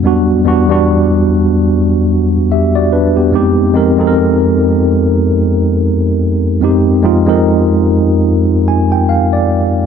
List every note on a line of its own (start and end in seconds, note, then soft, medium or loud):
0.03 0.33 E2 medium
0.03 0.33 G3 medium
0.03 0.34 B3 medium
0.03 0.34 D4 medium
0.03 0.35 F#4 medium
0.44 0.60 E2 medium
0.44 0.61 G3 medium
0.44 0.61 B3 medium
0.44 0.62 D4 medium
0.44 0.62 F#4 medium
0.68 1.72 E2 medium
0.68 1.72 G3 medium
0.68 1.73 B3 medium
0.68 1.73 D4 medium
0.68 1.74 F#4 medium
2.52 2.75 G4 medium
2.52 2.74 E5 medium
2.75 2.92 F#4 medium
2.75 2.92 D5 medium
2.93 3.16 D4 medium
2.93 3.15 B4 medium
3.16 3.56 B3 medium
3.16 3.34 G4 medium
3.32 3.62 F2 medium
3.32 3.62 G#3 medium
3.32 3.62 C4 medium
3.32 3.63 D#4 medium
3.32 3.63 G4 medium
3.73 3.89 F2 medium
3.73 3.90 G#3 medium
3.73 3.90 C4 medium
3.73 3.91 D#4 medium
3.73 3.91 A#4 medium
3.97 5.01 F2 medium
3.97 5.01 G#3 medium
3.97 5.02 C4 medium
3.97 5.02 D#4 medium
3.97 4.05 A4 medium
4.07 5.06 A#4 medium
6.61 6.90 F2 medium
6.61 6.91 G#3 medium
6.61 6.91 C4 medium
6.61 6.92 D#4 medium
6.61 6.92 G4 medium
7.02 7.18 F2 medium
7.02 7.18 G#3 medium
7.02 7.19 C4 medium
7.02 7.19 D#4 medium
7.02 7.20 F4 medium
7.26 8.30 F2 medium
7.26 8.30 G#3 medium
7.26 8.30 C4 medium
7.26 8.31 D#4 medium
7.26 8.31 A#4 medium
8.68 8.90 G#5 medium
8.92 9.08 G5 medium
9.09 9.31 F5 medium
9.33 9.86 D5 medium